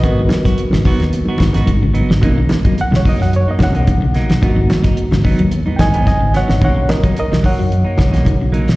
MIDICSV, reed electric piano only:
0, 0, Header, 1, 2, 480
1, 0, Start_track
1, 0, Key_signature, 5, "minor"
1, 0, Tempo, 548446
1, 28, Time_signature, 4, 2, 24, 8
1, 7668, End_track
2, 0, Start_track
2, 0, Title_t, "Reed electric piano"
2, 0, Program_c, 0, 4
2, 0, Note_on_c, 0, 71, 90
2, 0, Note_on_c, 0, 75, 103
2, 40, Note_on_c, 0, 70, 52
2, 48, Note_on_c, 0, 59, 48
2, 54, Note_on_c, 0, 66, 58
2, 1282, Note_off_c, 0, 71, 0
2, 1286, Note_off_c, 0, 75, 0
2, 1919, Note_off_c, 0, 70, 0
2, 1924, Note_off_c, 0, 59, 0
2, 1926, Note_off_c, 0, 66, 0
2, 1957, Note_on_c, 0, 58, 56
2, 1961, Note_on_c, 0, 61, 50
2, 1968, Note_on_c, 0, 63, 57
2, 2277, Note_off_c, 0, 58, 0
2, 2279, Note_off_c, 0, 61, 0
2, 2283, Note_off_c, 0, 63, 0
2, 2460, Note_on_c, 0, 78, 102
2, 2563, Note_off_c, 0, 78, 0
2, 2593, Note_on_c, 0, 73, 80
2, 2681, Note_off_c, 0, 73, 0
2, 2704, Note_on_c, 0, 75, 95
2, 2806, Note_off_c, 0, 75, 0
2, 2817, Note_on_c, 0, 78, 96
2, 2912, Note_off_c, 0, 78, 0
2, 2943, Note_on_c, 0, 73, 97
2, 3045, Note_off_c, 0, 73, 0
2, 3070, Note_on_c, 0, 75, 84
2, 3156, Note_on_c, 0, 58, 47
2, 3159, Note_off_c, 0, 75, 0
2, 3165, Note_on_c, 0, 61, 41
2, 3169, Note_on_c, 0, 63, 53
2, 3180, Note_on_c, 0, 78, 102
2, 3369, Note_off_c, 0, 58, 0
2, 3374, Note_off_c, 0, 61, 0
2, 3376, Note_off_c, 0, 63, 0
2, 3883, Note_on_c, 0, 59, 51
2, 3885, Note_on_c, 0, 58, 53
2, 3891, Note_on_c, 0, 66, 64
2, 4097, Note_off_c, 0, 78, 0
2, 4562, Note_off_c, 0, 58, 0
2, 4562, Note_off_c, 0, 59, 0
2, 4566, Note_off_c, 0, 66, 0
2, 5044, Note_on_c, 0, 79, 65
2, 5074, Note_off_c, 0, 79, 0
2, 5080, Note_on_c, 0, 80, 97
2, 5081, Note_on_c, 0, 75, 82
2, 5299, Note_off_c, 0, 75, 0
2, 5308, Note_off_c, 0, 80, 0
2, 5316, Note_on_c, 0, 75, 87
2, 5317, Note_on_c, 0, 80, 94
2, 5536, Note_off_c, 0, 75, 0
2, 5547, Note_off_c, 0, 80, 0
2, 5569, Note_on_c, 0, 73, 83
2, 5574, Note_on_c, 0, 78, 98
2, 5784, Note_off_c, 0, 73, 0
2, 5795, Note_off_c, 0, 78, 0
2, 5802, Note_on_c, 0, 58, 52
2, 5804, Note_on_c, 0, 61, 48
2, 5809, Note_on_c, 0, 63, 58
2, 5814, Note_on_c, 0, 73, 84
2, 5818, Note_on_c, 0, 78, 95
2, 6026, Note_off_c, 0, 73, 0
2, 6029, Note_on_c, 0, 70, 71
2, 6035, Note_on_c, 0, 75, 84
2, 6037, Note_off_c, 0, 78, 0
2, 6121, Note_off_c, 0, 58, 0
2, 6122, Note_off_c, 0, 61, 0
2, 6124, Note_off_c, 0, 63, 0
2, 6253, Note_off_c, 0, 70, 0
2, 6265, Note_off_c, 0, 75, 0
2, 6293, Note_on_c, 0, 70, 81
2, 6298, Note_on_c, 0, 75, 93
2, 6506, Note_off_c, 0, 70, 0
2, 6518, Note_off_c, 0, 75, 0
2, 6524, Note_on_c, 0, 73, 84
2, 6528, Note_on_c, 0, 78, 97
2, 7442, Note_off_c, 0, 73, 0
2, 7450, Note_off_c, 0, 78, 0
2, 7668, End_track
0, 0, End_of_file